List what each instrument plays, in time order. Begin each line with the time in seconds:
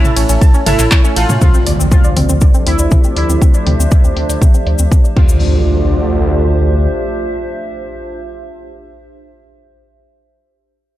Already playing: analog polysynth A3 E4 A4, analog synth pad C#5 E5 A5 E6
0.04 detuned saw bass A1, synth pluck A5 A6, mid tom, cabasa
0.16 detuned saw bass A1, analog polysynth A3 E4 A4, synth pluck C#4 C#5, open hi-hat, ride
0.29 detuned saw bass A1, synth pluck C#4 C#5, open hi-hat, cabasa
0.41 synth pluck A5 A6, kick, ride, cabasa
0.54 synth pluck C#4 C#5, cabasa
0.66 detuned saw bass G1, analog polysynth A3 E4 A4, synth pluck A4 A5, synth bell E5, open hi-hat, mid tom, ride
0.79 detuned saw bass A1, synth pluck A4 A5, clap, cabasa
0.91 synth pluck C#5 C#6, kick, clap, ride, cabasa
1.04 analog polysynth A3 E4 A4, synth pluck C#4 C#5, cabasa
1.16 detuned saw bass A1, analog polysynth F4, synth pluck A4 A5, synth bell F5, open hi-hat, ride
1.29 detuned saw bass A2, synth pluck C#4 C#5, mid tom, cabasa
1.42 analog synth pad F3 A3 C5 D5, synth pluck C4, ambient pad D4, analog polysynth F4, kick, mid tom, impact, cabasa
1.54 synth pluck C4, cabasa
1.67 detuned saw bass D2, synth pluck D5, open hi-hat
1.72 ambient pad G4
1.79 detuned saw bass D2, synth pluck C4, cabasa
1.92 synth pluck C4, analog polysynth F4, ambient pad E5, kick, cabasa
2.04 detuned saw bass D2, synth pluck D5, cabasa
2.17 detuned saw bass D2, synth pluck C4, open hi-hat, mid tom
2.29 detuned saw bass D2, synth pluck C4, cabasa
2.41 synth pluck D5, kick, cabasa
2.54 synth pluck C4, cabasa
2.62 ambient pad C5
2.67 detuned saw bass D2, synth pluck C4, analog polysynth E4, open hi-hat
2.79 detuned saw bass D2, synth pluck D5, cabasa
2.91 synth pluck C4, kick, mid tom, cabasa
3.04 synth pluck C4, cabasa
3.17 detuned saw bass D2, analog polysynth E4, synth pluck D5, open hi-hat
3.29 detuned saw bass D2, synth pluck C4, cabasa
3.42 synth pluck C4, kick, cabasa
3.54 synth pluck D5, cabasa
3.67 detuned saw bass D2, synth pluck C4, open hi-hat, mid tom
3.79 detuned saw bass D2, synth pluck C4, cabasa
3.91 synth pluck D5, kick, cabasa
4.04 detuned saw bass D2, synth pluck C4, cabasa
4.17 detuned saw bass D2, synth pluck C4, open hi-hat
4.29 detuned saw bass D2, synth pluck D5, open hi-hat, cabasa
4.42 synth pluck C4, kick, mid tom, cabasa
4.54 synth pluck C4, cabasa
4.67 detuned saw bass D2, synth pluck D5, open hi-hat
4.79 detuned saw bass D2, synth pluck C4, cabasa
4.92 synth pluck C4, kick, cabasa
5.04 synth pluck D5, cabasa
5.16 detuned saw bass D2, analog synth pad A3 F4 C5 D5, synth pluck C4, ambient pad D4, analog polysynth F4, kick, crash, impact
5.24 ambient pad G4
5.29 cabasa
5.57 ambient pad C5
5.64 ambient pad E5